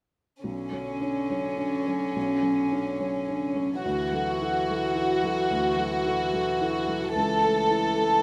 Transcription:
0.43 2.11 B1 soft
0.43 3.79 D3 soft
0.43 3.78 C#4 soft
0.72 0.99 F#3 soft
0.72 0.99 C#5 soft
1.00 1.27 D4 soft
1.00 1.28 C#5 soft
1.30 1.56 F#3 soft
1.30 1.56 C#5 soft
1.57 1.84 D4 soft
1.57 1.84 C#5 soft
1.87 2.13 F#3 soft
1.87 2.12 C#5 soft
2.15 3.79 B1 soft
2.42 2.68 F#3 soft
2.42 2.69 C#5 soft
2.72 2.97 D4 soft
2.72 2.97 C#5 soft
3.00 3.25 F#3 soft
3.00 3.25 C#5 soft
3.28 3.53 D4 soft
3.28 3.53 C#5 soft
3.55 3.80 F#3 soft
3.55 3.81 C#5 soft
3.83 5.47 D2 soft
3.83 7.12 E3 soft
3.83 7.12 F#4 soft
4.12 4.37 F#3 soft
4.12 4.37 A4 soft
4.41 4.65 E4 soft
4.41 4.65 A4 soft
4.70 4.93 F#3 soft
4.70 4.93 A4 soft
4.95 5.20 E4 soft
4.95 5.20 A4 soft
5.23 5.48 F#3 soft
5.23 5.48 A4 soft
5.50 7.13 D2 soft
5.77 6.02 F#3 soft
5.77 6.03 A4 soft
6.05 6.31 E4 soft
6.05 6.31 A4 soft
6.33 6.58 F#3 soft
6.33 6.59 A4 soft
6.61 6.86 E4 soft
6.61 6.86 A4 soft
6.87 7.13 F#3 soft
6.87 7.13 A4 soft
7.15 8.22 C#2 soft
7.15 8.22 E3 soft
7.15 8.22 A4 soft
7.43 7.69 A3 soft
7.43 7.68 A4 soft
7.71 7.96 E4 soft
7.71 7.97 A4 soft
7.99 8.22 A3 soft

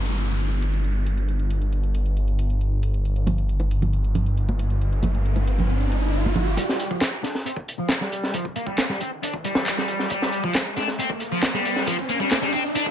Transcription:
0.00 6.56 G1 medium
0.00 downlifter medium
0.07 closed hi-hat soft
0.18 closed hi-hat medium
0.29 closed hi-hat soft
0.40 closed hi-hat soft
0.51 closed hi-hat soft
0.62 closed hi-hat medium
0.73 closed hi-hat soft
0.84 closed hi-hat soft
1.06 closed hi-hat medium
1.18 closed hi-hat soft
1.28 closed hi-hat soft
1.39 closed hi-hat soft
1.50 closed hi-hat medium
1.62 closed hi-hat soft
1.73 closed hi-hat soft
1.84 closed hi-hat soft
1.95 closed hi-hat medium
2.06 closed hi-hat soft
2.17 closed hi-hat soft
2.28 closed hi-hat soft
2.39 closed hi-hat medium
2.50 closed hi-hat soft
2.61 closed hi-hat soft
2.83 closed hi-hat medium
2.94 closed hi-hat soft
3.05 closed hi-hat soft
3.05 riser medium
3.16 closed hi-hat soft
3.27 closed hi-hat medium
3.27 high conga medium
3.27 low conga medium
3.38 closed hi-hat soft
3.49 closed hi-hat soft
3.60 closed hi-hat soft
3.60 high bongo medium
3.71 closed hi-hat medium
3.82 closed hi-hat soft
3.82 high conga medium
3.82 low conga medium
3.93 closed hi-hat soft
4.04 closed hi-hat soft
4.15 closed hi-hat medium
4.15 low conga medium
4.26 closed hi-hat soft
4.37 closed hi-hat soft
4.49 high conga medium
4.59 closed hi-hat medium
4.59 high bongo soft
4.70 closed hi-hat soft
4.81 closed hi-hat soft
4.93 closed hi-hat soft
5.03 closed hi-hat medium
5.03 high conga loud
5.03 low conga medium
5.15 closed hi-hat soft
5.26 closed hi-hat soft
5.36 closed hi-hat soft
5.36 high bongo medium
5.48 closed hi-hat medium
5.58 closed hi-hat soft
5.58 high conga medium
5.58 low conga medium
5.69 closed hi-hat soft
5.69 high bongo soft
5.81 closed hi-hat soft
5.92 closed hi-hat medium
5.92 high bongo soft
6.03 closed hi-hat soft
6.14 closed hi-hat soft
6.25 closed hi-hat soft
6.25 high conga medium
6.36 closed hi-hat medium
6.36 low conga medium
6.47 closed hi-hat soft
6.57 6.90 G3 medium
6.57 kick loud
6.57 closed hi-hat medium
6.57 riser medium
6.69 snare medium
6.80 closed hi-hat medium
6.91 7.00 F3 medium
6.91 kick medium
7.01 snare loud
7.01 clap loud
7.01 closed hi-hat medium
7.24 7.34 D4 medium
7.24 snare soft
7.24 closed hi-hat medium
7.35 snare soft
7.46 7.56 C4 medium
7.46 closed hi-hat medium
7.57 kick medium
7.68 closed hi-hat medium
7.79 7.88 F3 medium
7.89 snare loud
7.89 clap loud
7.89 closed hi-hat medium
8.01 8.33 G3 medium
8.01 snare soft
8.12 closed hi-hat medium
8.23 snare soft
8.34 8.43 F3 medium
8.34 kick loud
8.34 closed hi-hat medium
8.45 kick medium
8.56 8.67 A#3 medium
8.56 closed hi-hat medium
8.67 8.76 G3 medium
8.67 kick medium
8.78 8.84 A#3 medium
8.78 snare loud
8.78 clap loud
8.78 closed hi-hat medium
8.89 8.99 G3 medium
8.89 snare soft
9.01 9.10 C4 medium
9.01 closed hi-hat medium
9.23 9.33 D4 medium
9.23 closed hi-hat medium
9.34 kick medium
9.44 9.77 G3 medium
9.44 closed hi-hat medium
9.55 snare loud
9.66 clap loud
9.66 closed hi-hat medium
9.78 10.10 G3 medium
9.78 snare medium
9.88 closed hi-hat medium
9.99 snare soft
10.10 10.43 G3 medium
10.10 kick loud
10.10 closed hi-hat medium
10.22 snare medium
10.32 closed hi-hat medium
10.44 10.53 F3 medium
10.44 kick medium
10.54 snare loud
10.54 clap loud
10.54 closed hi-hat medium
10.77 10.87 D4 medium
10.77 snare soft
10.77 closed hi-hat medium
10.88 snare soft
10.99 11.09 C4 medium
10.99 closed hi-hat medium
11.10 kick loud
11.20 closed hi-hat medium
11.32 11.41 F3 medium
11.42 snare loud
11.42 clap loud
11.42 closed hi-hat medium
11.54 11.86 G3 medium
11.54 snare soft
11.65 closed hi-hat medium
11.76 snare medium
11.87 11.96 F3 medium
11.87 kick loud
11.87 closed hi-hat medium
11.99 kick medium
12.09 12.20 A#3 medium
12.09 closed hi-hat medium
12.20 12.29 G3 medium
12.20 kick loud
12.31 12.37 A#3 medium
12.31 snare loud
12.31 clap loud
12.31 closed hi-hat medium
12.42 12.52 G3 medium
12.42 snare soft
12.53 12.62 C4 medium
12.53 closed hi-hat medium
12.75 12.86 D4 medium
12.75 closed hi-hat medium
12.86 kick loud

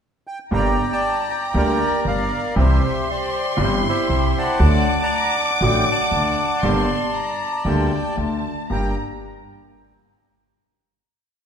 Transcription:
0.27 0.39 G5 medium
0.51 0.73 G1 medium
0.51 0.74 G1 medium
0.51 0.73 G2 medium
0.51 0.73 D3 medium
0.51 0.73 G3 soft
0.51 0.74 A#3 soft
0.51 0.74 G4 medium
0.51 0.92 D5 medium
0.51 1.28 G5 medium
0.51 2.54 A#5 medium
0.51 0.89 A#5 medium
0.93 1.55 D5 medium
0.93 1.32 A5 medium
1.30 1.55 G5 medium
1.54 1.77 D2 medium
1.54 1.77 D3 medium
1.54 1.76 G3 soft
1.54 1.77 A#3 soft
1.54 1.77 G4 medium
1.54 2.06 A#4 medium
1.54 2.06 D5 medium
1.54 2.04 G5 medium
2.04 2.27 G1 soft
2.04 2.28 G1 medium
2.04 2.27 G2 soft
2.04 2.55 A#4 medium
2.04 2.55 D5 medium
2.04 2.55 F5 medium
2.55 2.78 C2 medium
2.55 2.78 C3 medium
2.55 2.78 E3 medium
2.55 2.78 G3 medium
2.55 2.78 C4 medium
2.55 2.78 G4 medium
2.55 3.09 G4 medium
2.55 3.56 C5 medium
2.55 3.11 E5 medium
2.55 4.60 C6 medium
3.10 3.60 G4 soft
3.10 3.62 D5 medium
3.57 3.79 G1 medium
3.57 3.80 G1 medium
3.57 3.79 G2 medium
3.57 3.79 E3 medium
3.57 3.79 G3 medium
3.57 3.79 C4 medium
3.57 3.80 G4 medium
3.62 4.58 E4 soft
3.62 3.87 G4 soft
3.62 3.73 C5 medium
3.89 4.58 G4 medium
3.89 4.59 C5 medium
3.89 4.34 E5 medium
4.08 4.30 C2 soft
4.08 4.31 C2 medium
4.08 4.30 C3 soft
4.38 5.01 D5 medium
4.38 5.01 F#5 medium
4.38 5.34 A5 medium
4.59 4.81 D2 medium
4.59 4.81 D3 medium
4.59 4.81 F#3 medium
4.59 4.81 A3 medium
4.59 4.81 F#4 medium
4.59 6.60 D6 medium
5.02 5.64 D5 medium
5.02 5.89 F#5 medium
5.02 5.36 A#5 medium
5.39 5.50 A5 medium
5.61 5.82 A1 medium
5.61 5.83 A1 medium
5.61 5.83 A2 medium
5.61 5.83 D3 medium
5.61 5.83 F#3 medium
5.61 5.83 A3 medium
5.61 5.83 F#4 medium
5.65 5.89 D5 medium
5.65 5.76 G5 medium
5.78 5.88 G5 medium
5.91 8.16 D5 medium
5.91 6.61 F#5 medium
5.91 8.16 A5 medium
6.12 6.33 D2 medium
6.12 6.34 D2 soft
6.12 6.34 D3 soft
6.63 6.85 G1 medium
6.63 6.85 G2 medium
6.63 6.84 D3 medium
6.63 6.85 G3 medium
6.63 6.85 A#3 medium
6.63 6.85 G4 medium
6.63 7.14 C6 medium
7.14 7.66 A#5 medium
7.65 7.87 D2 medium
7.65 7.88 D2 medium
7.65 7.88 D3 medium
7.65 7.88 G3 medium
7.65 7.88 A#3 soft
7.65 7.88 G4 medium
7.65 8.18 G5 medium
8.17 8.40 D2 soft
8.17 8.40 D3 soft
8.17 8.71 A5 medium
8.70 8.92 G1 soft
8.70 8.92 G2 soft
8.70 8.92 A#3 soft
8.70 8.92 D4 soft
8.70 8.92 G4 soft
8.70 8.95 G5 medium
8.70 8.94 A#5 medium

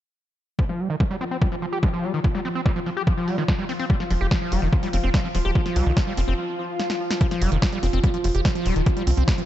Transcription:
0.59 0.65 F3 medium
0.59 7.20 F3 medium
0.59 7.20 F4 medium
0.59 kick loud
0.69 0.81 F3 medium
0.69 snare soft
0.79 0.88 G3 medium
0.79 open hi-hat loud
0.90 0.96 D#3 medium
1.00 1.04 F3 loud
1.00 kick loud
1.00 snare loud
1.10 1.17 G3 loud
1.21 1.24 C4 loud
1.31 1.37 C4 medium
1.41 1.48 G3 medium
1.41 kick loud
1.52 1.55 F3 loud
1.62 1.66 F3 medium
1.62 open hi-hat loud
1.73 1.79 G4 medium
1.83 1.89 F3 medium
1.83 kick loud
1.83 snare loud
1.93 2.05 F3 medium
2.04 2.13 G3 medium
2.04 open hi-hat loud
2.14 2.20 D#3 medium
2.24 2.28 F3 loud
2.24 kick loud
2.35 2.41 G3 loud
2.35 snare soft
2.45 2.49 C4 loud
2.45 open hi-hat loud
2.55 2.61 C4 medium
2.66 2.72 G3 medium
2.66 kick loud
2.66 snare loud
2.76 2.80 F3 loud
2.86 2.90 F3 medium
2.86 open hi-hat loud
2.97 3.03 G4 medium
3.07 3.13 F3 medium
3.07 kick loud
3.17 3.29 F3 medium
3.28 3.37 G3 medium
3.28 open hi-hat loud
3.38 3.44 D#3 medium
3.38 snare soft
3.48 3.52 F3 loud
3.48 kick loud
3.48 snare loud
3.59 3.65 G3 loud
3.69 3.73 C4 loud
3.69 open hi-hat loud
3.79 3.85 C4 medium
3.79 open hi-hat medium
3.90 3.96 G3 medium
3.90 kick loud
4.00 4.04 F3 loud
4.00 snare soft
4.10 4.16 F1 medium
4.10 4.14 F3 medium
4.10 open hi-hat loud
4.21 4.27 F1 medium
4.21 4.27 G4 medium
4.31 4.37 F3 medium
4.31 kick loud
4.31 snare loud
4.41 4.53 F3 medium
4.52 4.58 F1 medium
4.52 4.61 G3 medium
4.52 open hi-hat loud
4.62 4.68 F1 medium
4.62 4.68 D#3 medium
4.73 4.76 F3 loud
4.73 kick loud
4.83 4.89 G3 loud
4.83 open hi-hat medium
4.93 4.99 F1 loud
4.93 4.97 C4 loud
4.93 open hi-hat loud
5.04 5.09 F1 medium
5.04 5.10 C4 medium
5.14 5.20 G3 medium
5.14 kick loud
5.14 snare loud
5.24 5.28 F3 loud
5.35 5.41 D#1 medium
5.35 5.38 F3 medium
5.35 open hi-hat loud
5.45 5.51 D#1 medium
5.45 5.51 G4 medium
5.55 5.61 F3 medium
5.55 kick loud
5.66 5.77 F3 medium
5.66 snare soft
5.76 5.82 C2 medium
5.76 5.85 G3 medium
5.76 open hi-hat loud
5.86 5.92 C2 medium
5.86 5.92 D#3 medium
5.97 6.00 F3 loud
5.97 kick loud
5.97 snare loud
6.07 6.13 G3 loud
6.17 6.23 F1 medium
6.17 6.21 C4 loud
6.17 open hi-hat loud
6.28 6.34 F1 medium
6.28 6.34 C4 medium
6.38 swell medium
6.79 snare medium
6.90 snare medium
7.11 snare medium
7.21 9.46 F3 medium
7.21 7.27 F3 medium
7.21 9.46 F4 medium
7.21 kick loud
7.21 closed hi-hat medium
7.31 7.43 F3 medium
7.31 snare soft
7.31 closed hi-hat medium
7.42 7.47 F1 medium
7.42 7.51 G3 medium
7.42 open hi-hat loud
7.52 7.58 F1 medium
7.52 7.58 D#3 medium
7.52 closed hi-hat medium
7.62 7.66 F3 loud
7.62 kick loud
7.62 snare loud
7.62 closed hi-hat medium
7.73 7.79 G3 loud
7.73 closed hi-hat medium
7.83 7.89 F1 medium
7.83 7.87 C4 loud
7.83 open hi-hat medium
7.93 7.99 F1 medium
7.93 7.99 C4 medium
7.93 closed hi-hat medium
8.04 8.10 G3 medium
8.04 kick loud
8.04 closed hi-hat loud
8.14 8.18 F3 loud
8.14 closed hi-hat medium
8.24 8.30 F1 loud
8.24 8.28 F3 medium
8.24 open hi-hat loud
8.35 8.40 F1 medium
8.35 8.41 G4 medium
8.35 closed hi-hat medium
8.45 8.51 F3 medium
8.45 kick loud
8.45 snare loud
8.45 closed hi-hat loud
8.55 8.67 F3 medium
8.55 closed hi-hat medium
8.66 8.71 D#1 loud
8.66 8.75 G3 medium
8.66 open hi-hat medium
8.76 8.82 D#1 medium
8.76 8.82 D#3 medium
8.76 closed hi-hat medium
8.86 8.90 F3 loud
8.86 kick loud
8.86 closed hi-hat medium
8.97 9.03 G3 loud
8.97 closed hi-hat medium
9.07 9.13 C2 loud
9.07 9.11 C4 loud
9.07 open hi-hat loud
9.17 9.23 C2 medium
9.17 9.23 C4 medium
9.17 closed hi-hat medium
9.28 9.34 G3 medium
9.28 kick loud
9.28 snare loud
9.28 closed hi-hat medium
9.38 9.42 F3 loud
9.38 closed hi-hat medium

